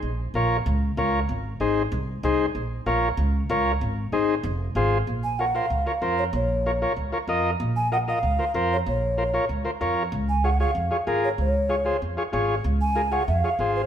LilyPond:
<<
  \new Staff \with { instrumentName = "Ocarina" } { \time 4/4 \key bes \minor \tempo 4 = 190 r1 | r1 | r1 | r1 |
r8 aes''8 ges''8 f''4. r8 des''8 | des''2 r2 | r8 aes''8 ges''8 f''4. r8 des''8 | des''2 r2 |
r8 aes''8 ges''8 f''4. r8 des''8 | des''2 r2 | r8 aes''4 ges''8 f''4. des''8 | }
  \new Staff \with { instrumentName = "Transistor combo organ" } { \time 4/4 \key bes \minor r4 <f' bes' des''>8 r4. <f' bes' des''>8 r8 | r4 <ees' aes' c''>8 r4. <ees' aes' c''>8 r8 | r4 <f' bes' des''>8 r4. <f' bes' des''>8 r8 | r4 <ees' aes' c''>8 r4. <f' aes' c''>8 r8 |
r4 <f' bes' des''>8 <f' bes' c''>8 r8 <f' bes' des''>8 <f' bes' c''>8 r8 | r4 <f' bes' des''>8 <f' bes' des''>8 r8 <f' bes' des''>8 <f' bes' ees''>8 r8 | r4 <f' bes' ees''>8 <f' bes' ees''>8 r8 <f' bes' c''>8 <f' bes' c''>8 r8 | r4 <f' bes' c''>8 <f' bes' des''>8 r8 <f' bes' c''>8 <f' bes' des''>8 r8 |
r4 <f' aes' des''>8 <f' aes' des''>8 r8 <f' aes' des''>8 <f' aes' bes'>8 r8 | r4 <f' aes' des''>8 <f' aes' c''>8 r8 <f' aes' des''>8 <f' aes' des''>8 r8 | r4 <f' aes' bes'>8 <f' aes' des''>8 r8 <f' aes' des''>8 <f' aes' c''>8 r8 | }
  \new Staff \with { instrumentName = "Upright bass" } { \clef bass \time 4/4 \key bes \minor bes,,4 bes,,4 des,4 des,4 | aes,,4 aes,,4 c,4 c,4 | bes,,4 bes,,4 des,4 des,4 | aes,,4 aes,,4 f,,4 aes,,4 |
bes,,2 des,8 r8 f,4 | bes,,2 des,8 r8 f,4 | bes,,2 des,8 r8 f,4 | bes,,2 des,8 r8 f,4 |
des,2 f,8 r8 aes,,4 | des,2 f,8 r8 aes,,4 | des,2 f,8 r8 aes,,4 | }
>>